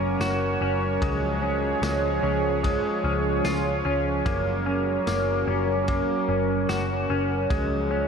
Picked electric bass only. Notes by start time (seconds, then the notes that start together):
Already playing: F#1
0.20 F#1
0.61 F#1
1.02 C#2
1.82 C#2
2.23 C#2
3.04 C#2
3.45 C#2
3.85 C#2
4.26 F#1
5.07 F#1
5.48 F#1
6.29 F#1
6.69 F#1
7.10 F#1
7.50 C#2